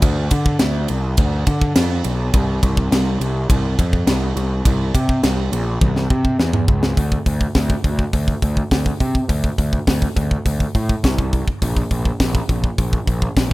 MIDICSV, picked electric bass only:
0, 0, Header, 1, 2, 480
1, 0, Start_track
1, 0, Key_signature, -1, "minor"
1, 0, Tempo, 579710
1, 24, Time_signature, 4, 2, 24, 8
1, 11204, End_track
2, 0, Start_track
2, 0, Title_t, "Picked electric bass"
2, 0, Program_c, 0, 34
2, 19, Note_on_c, 0, 38, 97
2, 226, Note_off_c, 0, 38, 0
2, 260, Note_on_c, 0, 50, 96
2, 466, Note_off_c, 0, 50, 0
2, 500, Note_on_c, 0, 38, 77
2, 706, Note_off_c, 0, 38, 0
2, 745, Note_on_c, 0, 36, 85
2, 949, Note_off_c, 0, 36, 0
2, 976, Note_on_c, 0, 38, 88
2, 1183, Note_off_c, 0, 38, 0
2, 1217, Note_on_c, 0, 50, 88
2, 1424, Note_off_c, 0, 50, 0
2, 1455, Note_on_c, 0, 41, 98
2, 1662, Note_off_c, 0, 41, 0
2, 1697, Note_on_c, 0, 35, 93
2, 1903, Note_off_c, 0, 35, 0
2, 1935, Note_on_c, 0, 36, 94
2, 2142, Note_off_c, 0, 36, 0
2, 2176, Note_on_c, 0, 36, 97
2, 2382, Note_off_c, 0, 36, 0
2, 2413, Note_on_c, 0, 36, 90
2, 2620, Note_off_c, 0, 36, 0
2, 2649, Note_on_c, 0, 36, 79
2, 2858, Note_off_c, 0, 36, 0
2, 2894, Note_on_c, 0, 36, 94
2, 3100, Note_off_c, 0, 36, 0
2, 3137, Note_on_c, 0, 41, 86
2, 3342, Note_off_c, 0, 41, 0
2, 3370, Note_on_c, 0, 36, 104
2, 3577, Note_off_c, 0, 36, 0
2, 3608, Note_on_c, 0, 36, 84
2, 3817, Note_off_c, 0, 36, 0
2, 3853, Note_on_c, 0, 36, 102
2, 4059, Note_off_c, 0, 36, 0
2, 4096, Note_on_c, 0, 48, 86
2, 4300, Note_off_c, 0, 48, 0
2, 4333, Note_on_c, 0, 36, 85
2, 4539, Note_off_c, 0, 36, 0
2, 4571, Note_on_c, 0, 34, 83
2, 4778, Note_off_c, 0, 34, 0
2, 4812, Note_on_c, 0, 36, 93
2, 5018, Note_off_c, 0, 36, 0
2, 5054, Note_on_c, 0, 48, 88
2, 5259, Note_off_c, 0, 48, 0
2, 5295, Note_on_c, 0, 40, 88
2, 5500, Note_off_c, 0, 40, 0
2, 5534, Note_on_c, 0, 37, 93
2, 5739, Note_off_c, 0, 37, 0
2, 5773, Note_on_c, 0, 38, 96
2, 5931, Note_off_c, 0, 38, 0
2, 6012, Note_on_c, 0, 38, 84
2, 6170, Note_off_c, 0, 38, 0
2, 6253, Note_on_c, 0, 38, 87
2, 6411, Note_off_c, 0, 38, 0
2, 6493, Note_on_c, 0, 38, 75
2, 6651, Note_off_c, 0, 38, 0
2, 6737, Note_on_c, 0, 38, 90
2, 6894, Note_off_c, 0, 38, 0
2, 6976, Note_on_c, 0, 38, 85
2, 7133, Note_off_c, 0, 38, 0
2, 7215, Note_on_c, 0, 38, 86
2, 7372, Note_off_c, 0, 38, 0
2, 7456, Note_on_c, 0, 48, 91
2, 7613, Note_off_c, 0, 48, 0
2, 7692, Note_on_c, 0, 38, 95
2, 7851, Note_off_c, 0, 38, 0
2, 7933, Note_on_c, 0, 38, 86
2, 8092, Note_off_c, 0, 38, 0
2, 8173, Note_on_c, 0, 38, 78
2, 8332, Note_off_c, 0, 38, 0
2, 8414, Note_on_c, 0, 38, 80
2, 8573, Note_off_c, 0, 38, 0
2, 8659, Note_on_c, 0, 38, 81
2, 8817, Note_off_c, 0, 38, 0
2, 8900, Note_on_c, 0, 45, 87
2, 9057, Note_off_c, 0, 45, 0
2, 9140, Note_on_c, 0, 36, 94
2, 9456, Note_off_c, 0, 36, 0
2, 9624, Note_on_c, 0, 34, 106
2, 9780, Note_off_c, 0, 34, 0
2, 9863, Note_on_c, 0, 34, 97
2, 10020, Note_off_c, 0, 34, 0
2, 10102, Note_on_c, 0, 34, 71
2, 10259, Note_off_c, 0, 34, 0
2, 10343, Note_on_c, 0, 34, 81
2, 10500, Note_off_c, 0, 34, 0
2, 10585, Note_on_c, 0, 34, 83
2, 10742, Note_off_c, 0, 34, 0
2, 10824, Note_on_c, 0, 34, 83
2, 10981, Note_off_c, 0, 34, 0
2, 11067, Note_on_c, 0, 34, 84
2, 11204, Note_off_c, 0, 34, 0
2, 11204, End_track
0, 0, End_of_file